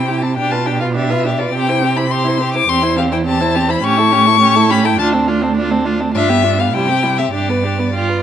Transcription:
Already playing: C3 G5
0.08 E4 G4
0.22 C4 E4 A5
0.37 B2 D4 G4 G5
0.51 F4 B4 A5
0.66 D4 G4 G5
0.80 F4 B4 F5
0.95 D4 G4 E5
1.10 F4 B4
1.24 D4 G4
1.39 F4 B4 D5
1.52 C3 C4 G4 G5
1.68 E4 C5
1.82 C4 G4
1.96 E4 C5 B5
2.10 C4 G4 C6
2.24 E4 C5
2.38 C4 G4
2.54 E4 C5 D6
2.67 E2 C4 G4 C6
2.82 E4 C5
2.97 C4 G4 F5
3.12 E4 C5 G5
3.26 C4 G4 A5
3.41 E4 C5
3.55 C4 G4
3.69 E4 C5 B5
3.83 A2 C#4 G4 C#6
3.97 E4 A4
4.12 C#4 G4
4.26 E4 A4
4.40 C#4 G4
4.55 E4 A4
4.70 C#4 G4 B5
4.84 E4 A4 G5
4.98 D2 D4 F4 A5
5.12 C4 D4
5.28 D4 F4
5.42 C4 D4
5.56 D4 F4
5.71 C4 D4
5.85 D4 F4
6.00 C4 D4
6.14 G2 D4 F4 E5
6.29 B3 G4
6.43 D4 F4
6.59 B3 G4 F5
6.73 C3 G3 E4 G5
6.88 C4 G4
7.03 G3 E4
7.18 C4 G4 E5
7.33 G2 D4 G4 D5
7.49 B3 B4
7.64 D4 G4
7.79 B3 B4
7.93 F4 G4
8.09 B4

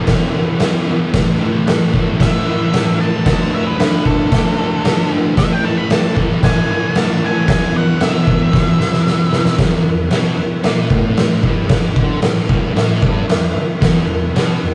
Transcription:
0.07 E2 B2 E3, kick, snare, crash
0.33 E2 B2 E3
0.60 E2 B2 E3, snare, crash
0.86 E2 B2 E3
1.12 A2 E3 A3, kick, snare, crash
1.40 A2 E3 A3
1.66 A2 E3 A3, snare, crash
1.93 A2 E3 A3, kick
2.18 A2 E3 A3, kick, snare, crash
2.22 E5
2.44 A2 E3 A3
2.71 A2 E3 A3, snare, crash
2.97 A2 E3 A3 A5
3.25 D3 A3 D4 A5, kick, snare, crash
3.52 D3 A3 D4 E5
3.67 B4
3.77 D3 A3 D4, snare, crash
4.03 D3 A3 D4 A4, kick
4.30 D3 A3 D4, kick, snare, crash
4.56 D3 A3 D4
4.83 D3 A3 D4, snare, crash
5.09 D3 A3 D4
5.36 A2 E3 A3 E5, kick, snare, crash
5.53 G5
5.63 A2 E3 A3 A5
5.78 B5
5.89 A2 E3 A3 A5, snare, crash
6.15 A2 E3 A3, kick
6.42 A2 E3 A3 G#5, kick, snare, crash
6.68 A2 E3 A3
6.95 A2 E3 A3 A5, snare, crash
7.21 A2 E3 A3
7.26 G#5
7.46 E2 B2 E3, kick, snare, crash
7.52 G#5
7.72 E2 B2 E3
7.77 F#5
7.99 E2 B2 E3 E5, snare, crash
8.27 E2 B2 E3, kick
8.52 E2 B2 E3, kick, snare
8.79 E2 B2 E3, snare
8.93 snare
9.05 E2 B2 E3, snare
9.31 E2 B2 E3, snare
9.45 snare
9.58 E2, kick, snare, crash
9.84 E2
10.10 B2, snare, crash
10.37 E2
10.63 A#2, snare, crash
10.90 A2, kick
11.17 snare, crash
11.42 G2, kick
11.69 kick, snare, crash
11.96 D3, kick
12.22 A2, snare, crash
12.49 G2, kick
12.74 A2, snare, crash
13.02 G2, kick
13.28 E2, snare, crash
13.55 muted distorted electric guitar stroke
13.80 E2, kick, snare, crash
14.08 E2
14.34 B2, snare, crash
14.60 E2

